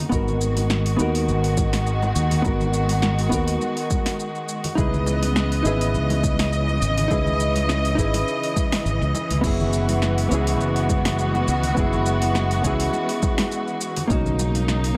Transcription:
0.09 fingered electric bass G#1, string section D#3 G#3 F#4, hollow-body jazz guitar B3 D#4 F#4, kick, high conga, shaker
0.15 hollow-body jazz guitar A#4
0.28 low conga, shaker
0.41 shaker
0.57 open hi-hat, muted conga, high conga, shaker
0.70 snare, shaker
0.86 open hi-hat, shaker
0.96 fingered electric bass D#2, hollow-body jazz guitar B3 D#4 F#4, muted conga, shaker
1.02 hollow-body jazz guitar A#4
1.15 open hi-hat, shaker
1.28 fingered electric bass G#1, shaker
1.44 open hi-hat, shaker
1.57 kick, muted conga, high conga, shaker
1.73 snare, open hi-hat, shaker
1.87 shaker
2.02 muted conga, shaker
2.16 fingered electric bass D#2, shaker
2.31 open hi-hat, low conga, shaker
2.42 fingered electric bass G#1, hollow-body jazz guitar B3 D#4 F#4, kick, high conga, shaker
2.47 hollow-body jazz guitar A#4
2.61 muted conga, low conga, shaker
2.74 shaker
2.89 open hi-hat, high conga, shaker
3.02 snare, muted conga, shaker
3.19 open hi-hat, shaker
3.29 fingered electric bass D#2, hollow-body jazz guitar B3 D#4 F#4, kick, shaker
3.34 hollow-body jazz guitar A#4
3.48 open hi-hat, shaker
3.61 muted conga, shaker
3.77 open hi-hat, shaker
3.90 kick, high conga, shaker
4.06 snare, open hi-hat, muted conga, shaker
4.20 shaker
4.35 shaker
4.49 shaker
4.64 open hi-hat, muted conga, low conga, shaker
4.75 fingered electric bass C#2, string section C#3 E3 B3 D#5, hollow-body jazz guitar D#4 E4 G#4, kick, high conga, shaker
4.80 hollow-body jazz guitar B4
4.93 low conga, shaker
5.06 muted conga, shaker
5.23 open hi-hat, high conga, shaker
5.36 snare, shaker
5.52 open hi-hat, shaker
5.63 fingered electric bass G#1, hollow-body jazz guitar D#4 E4 G#4, muted conga, shaker
5.68 hollow-body jazz guitar B4
5.81 open hi-hat, shaker
5.94 fingered electric bass C#2, shaker
6.10 open hi-hat, muted conga, shaker
6.23 kick, high conga, shaker
6.39 snare, open hi-hat, shaker
6.53 shaker
6.69 muted conga, shaker
6.82 fingered electric bass G#1, shaker
6.98 open hi-hat, low conga, shaker
7.08 fingered electric bass C#2, hollow-body jazz guitar D#4 E4 G#4, kick, muted conga, high conga, shaker
7.13 hollow-body jazz guitar B4
7.27 low conga, shaker
7.40 shaker
7.56 open hi-hat, high conga, shaker
7.69 snare, muted conga, shaker
7.85 open hi-hat, shaker
7.95 fingered electric bass G#1, hollow-body jazz guitar D#4 E4 G#4, kick, shaker
8.00 hollow-body jazz guitar B4
8.14 open hi-hat, muted conga, shaker
8.28 shaker
8.43 open hi-hat, shaker
8.56 kick, high conga, shaker
8.72 snare, open hi-hat, muted conga, shaker
8.85 fingered electric bass G#1, shaker
9.01 fingered electric bass C#2, shaker
9.15 muted conga, shaker
9.30 fingered electric bass C#2, open hi-hat, low conga, shaker
9.41 fingered electric bass F#1, string section G#3 B3 F#4, hollow-body jazz guitar B3 C#4 E4, kick, crash, high conga, shaker
9.46 hollow-body jazz guitar G#4
9.60 low conga, shaker
9.73 shaker
9.89 open hi-hat, muted conga, high conga, shaker
10.02 snare, shaker
10.18 open hi-hat, shaker
10.29 fingered electric bass C#2, hollow-body jazz guitar B3 C#4 E4, muted conga, shaker
10.34 hollow-body jazz guitar G#4
10.47 open hi-hat, shaker
10.60 fingered electric bass F#1, shaker
10.76 open hi-hat, shaker
10.89 kick, muted conga, high conga, shaker
11.05 snare, open hi-hat, shaker
11.19 shaker
11.35 muted conga, shaker
11.48 fingered electric bass C#2, shaker
11.63 open hi-hat, low conga, shaker
11.75 fingered electric bass F#1, hollow-body jazz guitar B3 C#4 E4, kick, high conga, shaker
11.80 hollow-body jazz guitar G#4
11.93 muted conga, low conga, shaker
12.06 shaker
12.22 open hi-hat, high conga, shaker
12.35 snare, muted conga, shaker
12.51 open hi-hat, shaker
12.62 fingered electric bass C#2, hollow-body jazz guitar B3 C#4 E4, kick, shaker
12.67 hollow-body jazz guitar G#4
12.80 open hi-hat, shaker
12.93 muted conga, shaker
13.09 open hi-hat, shaker
13.22 kick, high conga, shaker
13.38 snare, open hi-hat, muted conga, shaker
13.52 shaker
13.68 shaker
13.81 shaker
13.96 open hi-hat, muted conga, low conga, shaker
14.07 fingered electric bass B1, string section C#3 A#3 D#4, hollow-body jazz guitar A#3 C#4 D#4, kick, high conga, shaker
14.13 hollow-body jazz guitar F#4
14.26 low conga, shaker
14.39 muted conga, shaker
14.55 open hi-hat, high conga, shaker
14.68 snare, shaker
14.84 open hi-hat, shaker

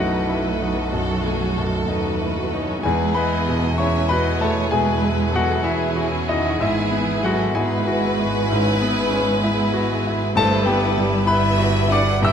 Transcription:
Already playing: grand piano B1 F#2 A3 D#4 E4 D#5 E5 F#5, double bass section B1, cello section F#3, viola section A3 D#4, violin section A4 B4
0.00 grand piano F#4
0.27 viola section E4, grand piano E4
0.60 grand piano D#4, viola section F#4
0.93 grand piano F#2, viola section B3, violin section A4
1.26 grand piano A3, violin section G#4
1.57 grand piano F#2, violin section A4
1.87 double bass section D#2, viola section B3 F#4, grand piano D#4, violin section B4
2.19 viola section A3, grand piano E4
2.51 viola section C#4, grand piano D#4
2.82 double bass section E2, grand piano E2 G#4 G#5, cello section G#3, viola section B3 E4, violin section G#4 B4
3.14 grand piano G#3 B4 B5, cello section B3, violin section D#5
3.48 grand piano B2
3.76 viola section G#3 E4, cello section C#4, grand piano E4 C#5 C#6, violin section G#4 E5
4.08 cello section B3, grand piano F#4 B4 B5, violin section D#5
4.41 cello section A3, grand piano E4 A4 A5, violin section C#5
4.70 grand piano B2 G#4 G#5, cello section G#3, viola section E4, violin section B4
5.02 grand piano G#3
5.33 grand piano B2 F#4 F#5, cello section F#3, violin section A4
5.63 cello section E3, viola section C#4, grand piano E4 E5, violin section G#4
5.96 grand piano F#4
6.28 cello section D#3, grand piano D#4 E4 D#5, violin section F#4
6.60 double bass section G#1, grand piano G#2 E4 E5, cello section E3, viola section B3 E4, violin section G#4
6.91 grand piano B3
7.23 cello section F#3, grand piano G#3 F#4 F#5, violin section A4
7.55 cello section G#3, viola section B3 D#4, grand piano E4 G#4 G#5, violin section B4
7.86 viola section E4, grand piano F#4
8.18 grand piano E4, viola section F#4
8.48 grand piano G#2, viola section C#4 E4, violin section G#4
8.78 viola section B3, grand piano B3
9.11 grand piano G#3, viola section C#4
9.41 viola section B3 E4, grand piano E4, violin section G#4
9.74 grand piano F#4
10.07 grand piano E4
10.34 double bass section G1, grand piano G2 A4 A5, viola section G3 E4, cello section A3, violin section B4 C5
10.66 cello section G3, grand piano B3 G4 G5, violin section B4
10.98 grand piano G3
11.26 viola section G3 E4, cello section B3, grand piano E4 B4 B5, violin section B4 E5
11.58 grand piano F#4
11.88 cello section D4, grand piano E4 D6, violin section F#5
11.93 grand piano D5
12.22 grand piano G2 E5 E6, viola section G3 E4, cello section E4, violin section B4 G5

